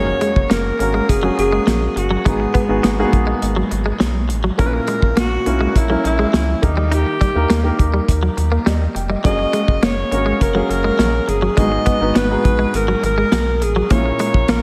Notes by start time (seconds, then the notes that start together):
Already playing: F#1 C#4 F#4 G#4 C#5
0.00 A#3
0.07 muted clean electric guitar stroke
0.21 G#3, closed hi-hat
0.36 F#1, kick
0.50 F#1 A#3 A#4, snare, closed hi-hat
0.79 G#1 A#3 C#4 F#4 A#4, muted clean electric guitar stroke, closed hi-hat
0.94 G#3
1.09 F#1 G#4, kick, closed hi-hat
1.23 F#3 A#3 C#4 F#4 G#4
1.38 F#1 G#4, muted clean electric guitar stroke, closed hi-hat
1.52 G#3
1.67 A#1 F#3, snare, closed hi-hat
1.96 G1 F#4, muted clean electric guitar stroke, closed hi-hat
2.11 F#3
2.25 G#1 G#2 G#3 B3 D#4 F#4 G#4, kick, closed hi-hat
2.40 muted clean electric guitar stroke
2.54 B3, kick, closed hi-hat
2.69 G#1 B3 D#4 F#4 G#4
2.83 G#1 B3, snare, closed hi-hat
2.99 A#3 D#4 F#4 G#4
3.05 B3
3.13 A#1, muted clean electric guitar stroke, kick, closed hi-hat
3.27 G#3
3.42 G#1, closed hi-hat
3.56 F#3
3.71 G#1, muted clean electric guitar stroke, closed hi-hat
3.86 G#3
4.00 B1 F#3, snare, closed hi-hat
4.29 A1, muted clean electric guitar stroke, closed hi-hat
4.44 F#3
4.58 A#1 A#2 A#3 C#4 E4 A#4, kick, closed hi-hat
4.66 B4
4.73 A#4, muted clean electric guitar stroke
4.87 G#3, closed hi-hat
5.02 A#1, kick
5.17 A#1 A#3 F#4, snare, closed hi-hat
5.46 B1 A#3 C#4 E4 A#4, muted clean electric guitar stroke, closed hi-hat
5.61 G#3
5.76 A#1 E4, kick, closed hi-hat
5.90 F#3 A#3 C#4 E4 A#4
6.04 A#1 E4, muted clean electric guitar stroke, closed hi-hat
6.19 G#3
6.33 C#2 F#3, snare, closed hi-hat
6.62 D#2 D#3 A#3 D#4 G4 A#4, muted clean electric guitar stroke, kick, closed hi-hat
6.77 G3
6.92 D#4 G4, closed hi-hat
7.06 muted clean electric guitar stroke
7.21 G3, kick, closed hi-hat
7.35 D#2 A#3 D#4 G4 A#4
7.50 D#2 A#3, snare, closed hi-hat
7.64 A#3 D#4 G4 A#4
7.79 D#2, muted clean electric guitar stroke, kick, closed hi-hat
7.94 G3
8.08 D#2, kick, closed hi-hat
8.23 F#3
8.37 D#2, muted clean electric guitar stroke, closed hi-hat
8.52 A#3
8.66 D#2 G3 D#5, snare, closed hi-hat
8.95 F1 G5, muted clean electric guitar stroke, closed hi-hat
9.10 G3 D#5
9.24 F#1 F#3 A#3 C#4 F#4 G#4 D#5, kick, closed hi-hat
9.39 muted clean electric guitar stroke
9.53 G#3, closed hi-hat
9.68 F#1, kick
9.83 F#1 A#3 C#5, snare, closed hi-hat
10.12 G#1 A#3 C#4 F#4 A#4, muted clean electric guitar stroke, closed hi-hat
10.26 G#3
10.41 F#1 A#4, kick, closed hi-hat
10.55 F#3 A#3 C#4 F#4 G#4
10.69 F#1 A#4, muted clean electric guitar stroke, closed hi-hat
10.84 G#3
10.99 A#1 F#3, snare, closed hi-hat
11.28 G1 G#4, muted clean electric guitar stroke, closed hi-hat
11.42 F#3
11.57 G#1 G#2 G#3 B3 D#4 F#4 G#4 D#5, kick, closed hi-hat
11.72 muted clean electric guitar stroke
11.86 B3, kick, closed hi-hat
12.01 G#1 B3 D#4 F#4 B4
12.15 G#1 B3 B4, snare, closed hi-hat
12.30 B3 D#4 F#4 G#4
12.44 A#1, muted clean electric guitar stroke, kick, closed hi-hat
12.59 G#3
12.74 G#1 A#4, closed hi-hat
12.88 F#3
13.03 G#1 A#4, muted clean electric guitar stroke, closed hi-hat
13.18 G#3
13.32 B1 F#3, snare, closed hi-hat
13.62 A1 G#4, muted clean electric guitar stroke, closed hi-hat
13.76 F#3
13.90 A#1 A#2 A#3 C#4 E4 A#4 C#5, kick, closed hi-hat
14.06 muted clean electric guitar stroke
14.19 G#3, closed hi-hat
14.34 A#1, kick
14.48 A#1 A#3 A#4, snare, closed hi-hat